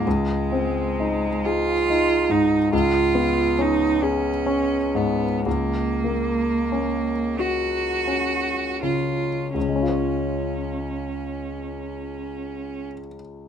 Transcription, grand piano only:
0.07 2.69 C#2 soft
0.52 1.28 C4 soft
1.00 1.72 D#4 soft
1.46 2.14 G#4 soft
1.90 2.56 D#4 soft
2.30 2.72 G#2 soft
2.73 5.42 C#2 soft
3.15 3.84 B3 soft
3.59 4.29 C#4 soft
4.02 4.75 G#4 soft
4.46 5.24 C#4 soft
4.95 5.46 G#2 soft
5.47 9.51 C#2 soft
6.04 7.12 A#3 soft
6.72 7.81 C#4 soft
7.39 8.52 F#4 soft
8.07 9.27 C#4 soft
8.83 9.55 C#3 soft
9.54 12.86 C#2 soft
9.61 12.93 C#3 soft
9.69 13.00 G#3 soft
9.76 13.07 C#4 soft
9.82 13.14 F4 soft
9.89 13.21 C#5 soft

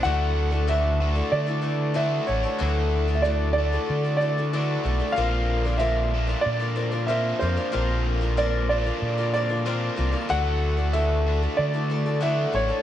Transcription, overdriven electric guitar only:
0.04 1.02 D3 medium
0.04 1.01 A3 medium
0.04 1.01 D4 medium
0.04 1.00 F#4 medium
1.00 1.96 D3 medium
1.00 1.96 A3 medium
1.00 1.98 D4 medium
1.00 1.95 F#4 medium
1.97 2.59 D3 medium
1.97 2.59 A3 medium
1.97 2.62 D4 medium
1.97 2.60 F#4 medium
2.62 3.56 D3 medium
2.62 3.56 A3 medium
2.62 3.58 D4 medium
2.62 3.57 F#4 medium
3.58 4.53 D3 medium
3.58 4.53 A3 medium
3.58 4.55 D4 medium
3.58 4.52 F#4 medium
4.54 5.16 D3 medium
4.54 5.16 A3 medium
4.54 5.19 D4 medium
4.54 5.17 F#4 medium
5.18 6.15 A#2 medium
5.18 6.13 D3 medium
5.18 6.14 A#3 medium
5.18 6.14 D4 medium
5.18 6.13 F4 medium
6.13 7.09 A#2 medium
6.13 7.09 D3 medium
6.13 7.08 A#3 medium
6.13 7.11 D4 medium
6.13 7.08 F4 medium
7.10 7.72 A#2 medium
7.10 7.73 D3 medium
7.10 7.73 A#3 medium
7.10 7.74 D4 medium
7.10 7.73 F4 medium
7.73 8.68 A#2 medium
7.73 8.68 D3 medium
7.73 8.68 A#3 medium
7.73 8.70 D4 medium
7.73 8.69 F4 medium
8.70 9.64 A#2 medium
8.70 9.65 D3 medium
8.70 9.65 A#3 medium
8.70 9.67 D4 medium
8.70 9.64 F4 medium
9.66 10.28 A#2 medium
9.66 10.28 D3 medium
9.66 10.29 A#3 medium
9.66 10.31 D4 medium
9.66 10.29 F4 medium
10.30 11.28 D3 medium
10.30 11.28 A3 medium
10.30 11.27 D4 medium
10.30 11.26 F#4 medium
11.26 12.21 D3 medium
11.26 12.21 A3 medium
11.26 12.23 D4 medium
11.26 12.21 F#4 medium
12.22 12.82 D3 medium
12.22 12.82 A3 medium
12.22 12.82 D4 medium
12.22 12.82 F#4 medium

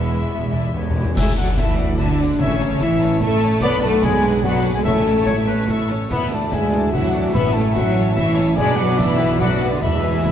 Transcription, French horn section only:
1.19 1.28 G#4 loud
1.40 1.49 F#4 medium
1.60 1.99 E4 loud
2.00 2.41 D4 loud
2.42 2.82 C#4 loud
2.82 3.21 E4 loud
3.22 3.62 A4 loud
3.63 3.83 B4 loud
3.85 4.05 A4 loud
4.04 4.45 G#4 loud
4.44 4.75 F#4 loud
4.74 4.79 G#4 loud
4.83 5.66 A4 loud
6.13 6.31 B4 medium
6.32 6.53 A4 medium
6.52 6.93 G#4 loud
6.93 7.33 F#4 loud
7.34 7.55 B4 loud
7.55 7.75 A4 medium
7.75 8.16 F#4 loud
8.17 8.58 E4 loud
8.56 8.77 G#4 loud
8.79 8.99 F#4 loud
8.98 9.40 E4 loud
9.40 9.72 F#4 loud
9.70 9.75 D4 loud
9.85 10.32 E4 loud

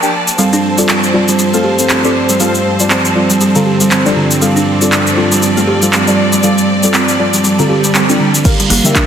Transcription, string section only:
0.00 0.34 F3 medium
0.00 0.35 A#3 medium
0.00 0.35 D5 medium
0.00 8.41 A5 medium
0.38 8.41 G2 medium
0.38 8.41 F3 medium
0.38 8.41 C4 medium
0.38 4.38 C5 medium
4.41 8.41 D5 medium
8.45 9.06 D3 medium
8.45 9.06 G3 medium
8.45 9.06 A#3 medium
8.45 9.06 F4 medium

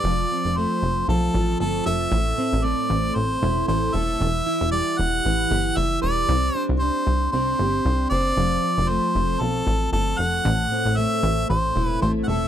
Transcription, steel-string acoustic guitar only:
0.00 0.10 G3 medium
0.00 0.11 D4 medium
0.00 0.11 G4 medium
0.00 0.10 B4 medium
0.05 1.07 F3 medium
0.32 2.38 C4 medium
0.58 1.59 A3 medium
1.08 2.18 F3 medium
1.35 2.18 F4 medium
1.60 2.64 A3 medium
1.86 3.94 A4 medium
2.12 3.15 A2 medium
2.38 4.26 C4 medium
2.64 3.67 A3 medium
3.16 4.26 A2 medium
3.43 4.46 E4 medium
3.69 4.26 A3 medium
3.94 4.26 A4 medium
4.20 5.23 E3 medium
4.46 6.35 E4 medium
4.72 5.76 G3 medium
5.25 6.35 E3 medium
5.50 7.60 G4 medium
5.76 6.28 G3 medium
6.02 6.34 B4 medium
6.29 7.34 C4 medium
6.55 6.81 D4 medium
6.82 7.84 D4 medium
7.34 8.63 C4 medium
7.60 8.43 G4 soft
7.85 8.43 D4 medium
8.12 10.19 C5 medium
8.37 9.40 F3 medium
8.63 10.71 C4 medium
8.89 9.93 A3 medium
9.41 10.51 F3 medium
9.94 10.98 A3 medium
10.20 12.29 A4 medium
10.45 11.48 A2 medium
10.72 12.48 C4 medium
10.98 12.01 A3 medium
11.49 12.48 A2 medium
11.76 12.48 E4 medium
12.03 12.48 A3 medium
12.29 12.48 A4 medium

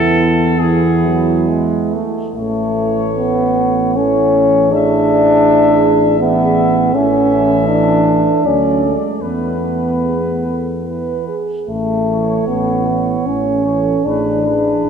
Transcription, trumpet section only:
0.00 0.57 A4 loud
0.59 1.49 G#4 medium
2.36 3.92 C#5 medium
3.94 4.70 C#5 medium
4.73 6.20 E5 medium
6.22 6.93 E5 medium
6.95 8.42 E5 medium
8.45 9.21 D5 medium
9.22 10.70 B4 soft
10.87 11.34 B4 soft
12.09 12.86 C#5 soft
12.90 13.64 C#5 soft
13.65 14.04 C#5 soft
14.07 14.44 B4 soft
14.45 14.90 B4 soft

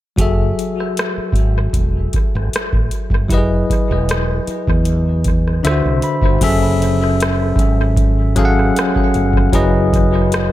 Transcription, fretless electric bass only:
0.18 0.51 F#1 medium
1.18 muted fretless electric bass stroke soft
1.33 1.67 G#1 medium
1.74 2.07 E1 medium
2.35 2.50 G#1 medium
2.53 muted fretless electric bass stroke soft
2.74 2.89 A1 medium
3.11 3.30 G1 medium
3.30 3.63 F#1 medium
3.91 4.39 E1 medium
4.48 muted fretless electric bass stroke soft
4.68 5.60 E2 medium
5.65 5.82 D2 medium
5.86 6.00 C2 medium
6.22 6.38 G1 medium
6.42 7.54 F#1 medium
7.57 8.70 G#1 medium
9.15 9.48 G1 medium
9.54 10.52 F#1 loud

